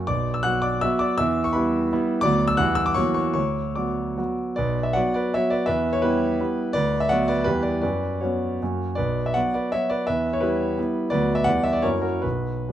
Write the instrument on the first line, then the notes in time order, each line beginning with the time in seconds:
grand piano
Already playing: A#3
0.07 B1 D5 D6
0.34 E6
0.43 F#3 B3 F#4 F#5 F#6
0.62 D5 D6
0.81 F#3 B3 F#4 E5 E6
0.99 D5 D6
1.18 E2 E5 E6
1.44 C#6
1.53 G3 B3 E4 B4 B5
1.93 G3 B3 E4
2.21 D2 F#3 B3 F#4 D5 D6
2.48 E6
2.57 E2 G3 B3 E4 F#5 F#6
2.75 E6
2.86 D6
2.94 E2 F#3 A#3 F#4 C#5 C#6
3.14 C#5 C#6
3.34 D2 C#5 C#6
3.76 F#3 B3 F#4 D5 D6
4.18 F#3 B3 F#4
4.56 B1 B4 D5
4.83 E5
4.93 F#3 B3 F#4 D5 F#5
5.14 B4 D5
5.34 F#3 B3 F#4 C#5 E5
5.50 B4 D5
5.66 E2 B4 E5
5.93 C#5
6.02 G3 B3 E4 G4 B4
6.40 G3 B3 E4
6.73 D2 B4 D5
7.00 E5
7.09 F#3 B3 F#4 D5 F#5
7.28 B4 D5
7.44 E2 G3 B3 E4 G4 B4
7.63 B4 D5
7.82 F#2 B4 D5
8.21 F#3 B3 C#4 F#4 C#5
8.62 F#2 F#3 A#3 F#4
8.95 B1 B4 D5
9.26 E5
9.34 F#3 B3 F#4 D5 F#5
9.54 B4 D5
9.72 F#3 B3 F#4 C#5 E5
9.90 B4 D5
10.07 E2 B4 E5
10.33 C#5
10.41 G3 B3 E4 G4 B4
10.78 G3 B3 E4
11.10 D2 F#3 B3 F#4 B4 D5
11.35 E5
11.44 E2 G3 B3 E4 D5 F#5
11.64 E5
11.73 D5
11.82 F#2 F#3 A#3 E4 A#4 C#5
12.02 F#4 A#4
12.22 B1 F#4 B4
12.69 F#3 B3